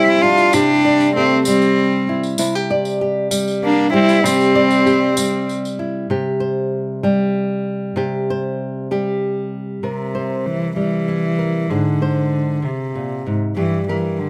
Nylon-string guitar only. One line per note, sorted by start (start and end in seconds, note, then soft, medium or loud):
0.00 0.54 C3 medium
0.00 1.47 G3 medium
0.00 0.23 E4 medium
0.00 0.54 G4 medium
0.00 0.57 D5 medium
0.24 0.88 E4 medium
0.54 2.38 C3 medium
0.54 1.17 G4 medium
0.85 2.42 D5 medium
1.17 2.39 G4 medium
1.47 3.30 G3 medium
2.09 2.39 E4 medium
2.39 4.24 C3 medium
2.39 2.55 E4 medium
2.55 3.00 G4 medium
2.71 4.27 D5 medium
3.01 4.24 G4 medium
3.31 3.93 G3 medium
3.94 5.16 G3 medium
4.24 6.07 C3 medium
4.24 4.85 G4 medium
4.55 6.07 D5 medium
4.86 6.07 G4 medium
5.17 7.02 G3 medium
5.79 6.07 E4 medium
6.10 7.95 C3 medium
6.10 7.04 G4 medium
6.40 8.30 C5 medium
7.03 8.90 G3 medium
7.03 7.97 G4 medium
7.96 9.79 C3 medium
7.96 8.90 G4 medium
8.30 9.81 C5 medium
8.91 10.75 G3 medium
8.91 9.80 G4 medium
9.83 11.66 C3 soft
9.83 11.38 A#4 soft
10.15 11.67 C5 soft
10.76 11.70 G3 soft
11.08 11.67 E4 soft
11.39 11.66 A#4 soft
11.70 12.62 G#2 medium
11.70 13.54 G#4 soft
12.02 13.54 C5 soft
12.62 12.94 C3 soft
12.95 13.26 A#2 soft
13.27 13.56 G#2 soft
13.56 14.30 G2 medium
13.56 14.30 G4 soft
13.89 14.30 A#4 soft